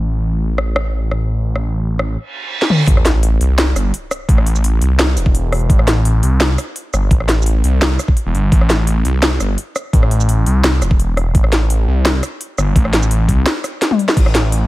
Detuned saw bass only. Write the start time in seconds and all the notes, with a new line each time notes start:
Already playing: A1
2.87 A1
3.41 C2
3.75 G1
4.29 A1
4.82 C2
5.17 E1
5.70 A1
6.23 C2
6.93 G1
7.11 A1
7.64 C2
8.26 E1
8.34 G1
8.52 A1
9.05 C2
9.41 G1
9.93 A1
10.46 C2
10.82 E1
11.35 A1
11.88 C2
12.58 G1
12.76 A1
13.29 C2
14.17 A1